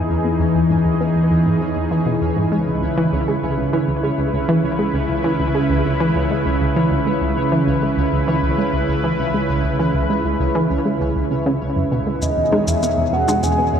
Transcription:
Already playing: analog synth pad E2 E3 D#4 G#4, synth texture C#4 C#5
0.09 synth arpeggio sound E2
0.25 synth arpeggio sound B3
0.40 synth arpeggio sound E2
0.55 synth arpeggio sound E2
0.70 synth arpeggio sound G#2
0.85 synth arpeggio sound E2
1.01 synth arpeggio sound B3
1.16 synth arpeggio sound E2
1.31 synth arpeggio sound E2
1.46 synth arpeggio sound G#2
1.61 synth arpeggio sound E3
1.76 synth arpeggio sound E2
1.91 synth arpeggio sound E3
2.06 synth arpeggio sound B2
2.22 synth arpeggio sound E2
2.37 synth arpeggio sound G#2
2.52 analog synth pad C#2 C#3 E4 B4, synth arpeggio sound G#3
2.67 synth arpeggio sound C#2
2.82 synth arpeggio sound C#2
2.97 synth arpeggio sound E3
3.13 synth arpeggio sound C#2
3.28 synth arpeggio sound G#3
3.43 synth arpeggio sound C#2
3.58 synth arpeggio sound C#2
3.73 synth arpeggio sound E3
3.88 synth arpeggio sound C#2
4.03 synth arpeggio sound G#3
4.18 synth arpeggio sound C#2
4.33 synth arpeggio sound C#2
4.49 synth arpeggio sound E3
4.64 synth arpeggio sound C#2
4.79 synth arpeggio sound G#3
4.94 synth arpeggio sound C#2
5.09 synth arpeggio sound C#2
5.24 synth arpeggio sound E3
5.40 synth arpeggio sound C#2
5.55 synth arpeggio sound G#3
5.70 synth arpeggio sound C#2
5.85 synth arpeggio sound C#2
6.00 synth arpeggio sound E3
6.16 synth arpeggio sound C#2
6.31 synth arpeggio sound G#3
6.46 synth arpeggio sound C#2
6.61 synth arpeggio sound C#2
6.76 synth arpeggio sound E3
6.91 synth arpeggio sound C#2
7.06 synth arpeggio sound G#3
7.21 synth arpeggio sound C#2
7.37 synth arpeggio sound C#2
7.52 synth arpeggio sound E3
7.67 synth arpeggio sound C#2
7.83 synth arpeggio sound G#3
7.98 synth arpeggio sound C#2
8.13 synth arpeggio sound C#2
8.28 synth arpeggio sound E3
8.43 synth arpeggio sound C#2
8.58 synth arpeggio sound G#3
8.73 synth arpeggio sound C#2
8.89 synth arpeggio sound C#2
9.04 synth arpeggio sound E3
9.19 synth arpeggio sound C#2
9.34 synth arpeggio sound G#3
9.49 synth arpeggio sound C#2
9.64 synth arpeggio sound C#2
9.79 synth arpeggio sound E3
9.94 synth arpeggio sound C#2
10.10 synth arpeggio sound G#3
10.25 synth arpeggio sound C#2
10.40 synth arpeggio sound C#2
10.55 synth arpeggio sound E3
10.70 synth arpeggio sound C#2
10.85 synth arpeggio sound G#3
11.01 synth arpeggio sound C#2
11.16 synth arpeggio sound C#2
11.31 synth arpeggio sound C#3
11.46 synth arpeggio sound C#3
11.61 synth arpeggio sound C#2
11.76 synth arpeggio sound F#2
11.92 synth arpeggio sound B2
12.07 synth arpeggio sound G#3
12.22 analog synth pad E2 B2 D#3 G#4, synth arpeggio sound E2, synth texture C#4 C#5, soft synth lead D#5, shaker
12.37 synth arpeggio sound E2
12.52 synth arpeggio sound G#3, low bongo
12.68 synth arpeggio sound E2, soft synth lead E5, shaker
12.83 synth arpeggio sound B3, shaker
12.98 synth arpeggio sound E2
13.13 synth arpeggio sound E2, soft synth lead F#5
13.28 synth arpeggio sound G#3, low bongo, shaker
13.43 synth arpeggio sound E2, soft synth lead G#5, shaker
13.58 synth arpeggio sound B3
13.74 synth arpeggio sound E2

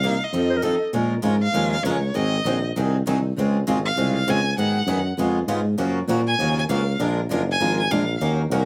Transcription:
Already playing: tuba C2, violin F5
0.03 steel-string acoustic guitar C3 F#3 A#3 D#4 A#4
0.24 violin D#5
0.32 tuba F2, steel-string acoustic guitar F3 C4 D#4 A4
0.50 clarinet C5
0.57 clarinet A#4
0.62 steel-string acoustic guitar F3 C4 D#4 A4, clarinet A4
0.93 tuba A#2, steel-string acoustic guitar F3 G#3 C#4 F4 A#4
1.22 tuba G#2, steel-string acoustic guitar F3 G#3 C#4 F4 A#4
1.43 violin F5
1.53 tuba D#2, steel-string acoustic guitar F3 G#3 C#4 F4 A#4
1.72 violin F5
1.82 tuba C#2, steel-string acoustic guitar F3 G#3 C#4 A#4, violin C#5
1.86 steel-string acoustic guitar F4
2.14 tuba G#1, steel-string acoustic guitar D#3 F#3 C4 D#4 G#4, violin D#5
2.44 tuba A#1, steel-string acoustic guitar D#3 F#3 C4 D#4 G#4
2.76 tuba C2, steel-string acoustic guitar D#3 F#3 C4 D#4 G#4
3.07 tuba C2, steel-string acoustic guitar D#3 F#3 C4 D#4 G#4
3.36 tuba C#2, steel-string acoustic guitar C#3 G#3 C4 F4 G#4
3.67 tuba G#1, steel-string acoustic guitar C#3 G#3 C4 F4 G#4
3.86 violin F5
3.96 tuba C2, steel-string acoustic guitar C#3 G#3 C4 F4 G#4
4.16 violin F5
4.27 tuba C#2, steel-string acoustic guitar C#3 G#3 C4 F4 G#4, violin G#5
4.57 tuba G#2, steel-string acoustic guitar D#3 F#3 B3 D#4 G#4, violin F#5
4.86 tuba F#2, steel-string acoustic guitar D#3 F#3 B3 D#4 G#4
5.17 tuba F2, steel-string acoustic guitar C#3 G#3 B3 F4 G#4
5.46 tuba G#2, steel-string acoustic guitar C#3 G#3 B3 F4 G#4
5.77 tuba F#2, steel-string acoustic guitar C#3 F3 F#3 A#3 C#4 F4 F#4 A#4
6.07 tuba A#2, steel-string acoustic guitar C#3 F3 F#3 A#3 C#4 F4 F#4 A#4
6.28 violin G#5
6.38 tuba D#2, steel-string acoustic guitar C#3 F3 F#3 A#3 C#4 F4 F#4 A#4
6.58 violin G#5
6.69 tuba C#2, steel-string acoustic guitar C#3 F3 F#3 A#3 C#4 F4 F#4 A#4, violin F5
6.99 tuba A#1, steel-string acoustic guitar F3 G#3 D4 F4 A#4
7.29 tuba F#1, steel-string acoustic guitar F3 G#3 D4 F4 A#4
7.52 violin G#5
7.60 tuba G#1, steel-string acoustic guitar F3 G#3 D4 F4 A#4
7.80 violin G#5
7.90 tuba A#1, steel-string acoustic guitar F3 G#3 D4 F4 A#4, violin F5
8.20 tuba D#2, steel-string acoustic guitar D#3 F#3 A#3 C#4 D#4 F#4 A#4
8.50 tuba C2, steel-string acoustic guitar D#3 F#3 A#3 C#4 D#4 F#4 A#4

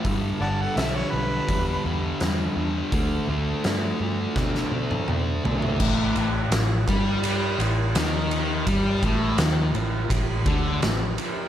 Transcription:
0.05 fingered electric bass G1, distorted electric guitar G2 D3 G3, kick, open hi-hat
0.40 fingered electric bass G1, distorted electric guitar G2 D3 G3, lead electric guitar C#5, harmonica D5 F#5 A5
0.61 lead electric guitar A4, harmonica F#5
0.76 fingered electric bass B1, distorted electric guitar G2 D3 G3, lead electric guitar G4, harmonica E5, snare, open hi-hat
0.95 lead electric guitar E4, harmonica C#5
1.11 fingered electric bass B1, distorted electric guitar G2 D3 G3, lead electric guitar D4, harmonica B4
1.48 fingered electric bass E2, distorted electric guitar G2 D3 G3, kick, open hi-hat
1.84 fingered electric bass E2, distorted electric guitar G2 D3 G3
2.20 fingered electric bass E2, distorted electric guitar G2 D3 G3, snare, open hi-hat
2.56 fingered electric bass E2, distorted electric guitar G2 D3 G3
2.92 fingered electric bass D2, distorted electric guitar D3 A3 D4, kick, open hi-hat
3.27 fingered electric bass D2, distorted electric guitar D3 A3 D4
3.64 fingered electric bass G2, distorted electric guitar D3 A3 D4, snare, open hi-hat
4.00 fingered electric bass G2, distorted electric guitar D3 A3 D4
4.36 fingered electric bass B2, distorted electric guitar D3 A3 D4, kick, snare
4.55 snare
4.72 fingered electric bass B2, distorted electric guitar D3 A3 D4
4.91 high tom
5.08 fingered electric bass B2, distorted electric guitar D3 A3 D4, mid tom
5.43 fingered electric bass B2, distorted electric guitar D3 A3 D4, floor tom
5.62 floor tom
5.80 fingered electric bass A1, distorted electric guitar A2, kick, crash
6.16 fingered electric bass A1, distorted electric guitar A2, ride
6.51 fingered electric bass A1, distorted electric guitar A2, snare, ride
6.87 fingered electric bass G2, distorted electric guitar G3, kick, ride
7.23 ride
7.59 fingered electric bass A1, distorted electric guitar A2, ride
7.95 fingered electric bass D#2, distorted electric guitar D#3, snare, ride
8.31 ride
8.67 fingered electric bass G2, distorted electric guitar G3, kick, ride
9.03 fingered electric bass A1, distorted electric guitar A2, kick, ride
9.38 fingered electric bass D#2, distorted electric guitar D#3, snare, ride
9.74 fingered electric bass A1, distorted electric guitar A2, ride
10.10 fingered electric bass A1, distorted electric guitar A2, kick, ride
10.46 fingered electric bass D2, distorted electric guitar D3, kick, ride
10.82 fingered electric bass A1, distorted electric guitar A2, snare, ride
11.18 ride

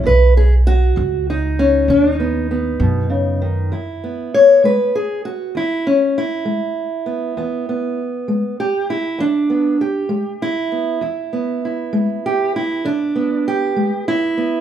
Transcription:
0.04 upright bass B1, steel-string acoustic guitar B2 B4
0.37 steel-string acoustic guitar G#4
0.67 steel-string acoustic guitar F#4
0.96 upright bass C#2, steel-string acoustic guitar F#3
1.30 steel-string acoustic guitar D#4
1.59 steel-string acoustic guitar C#4
1.88 upright bass D#2, steel-string acoustic guitar B2 D4
2.13 steel-string acoustic guitar D#4
2.20 steel-string acoustic guitar B3
2.51 steel-string acoustic guitar B3
2.80 upright bass F#2, steel-string acoustic guitar B2
3.10 steel-string acoustic guitar C#3
3.42 steel-string acoustic guitar D#3
3.72 steel-string acoustic guitar E2 E4
4.04 steel-string acoustic guitar B3
4.34 steel-string acoustic guitar C#5
4.64 steel-string acoustic guitar G#3 B4
4.95 steel-string acoustic guitar G#4
5.25 steel-string acoustic guitar F#4
5.55 steel-string acoustic guitar E2 E4
5.87 steel-string acoustic guitar C#4
6.18 steel-string acoustic guitar E4
6.45 steel-string acoustic guitar G#3
7.06 steel-string acoustic guitar B3
7.37 steel-string acoustic guitar E2 B3
7.69 steel-string acoustic guitar B3
8.28 steel-string acoustic guitar G#3
8.60 steel-string acoustic guitar G4
8.90 steel-string acoustic guitar E4
9.18 steel-string acoustic guitar E2 D4
9.50 steel-string acoustic guitar B3
9.81 steel-string acoustic guitar G4
10.09 steel-string acoustic guitar G#3
10.42 steel-string acoustic guitar E4
10.72 steel-string acoustic guitar B3
11.01 steel-string acoustic guitar E2 E4
11.33 steel-string acoustic guitar B3
11.65 steel-string acoustic guitar E4
11.93 steel-string acoustic guitar G#3
12.26 steel-string acoustic guitar G4
12.56 steel-string acoustic guitar E4
12.85 steel-string acoustic guitar E2 D4
13.16 steel-string acoustic guitar B3
13.48 steel-string acoustic guitar G4
13.76 steel-string acoustic guitar G#3
14.08 steel-string acoustic guitar E4
14.37 steel-string acoustic guitar B3

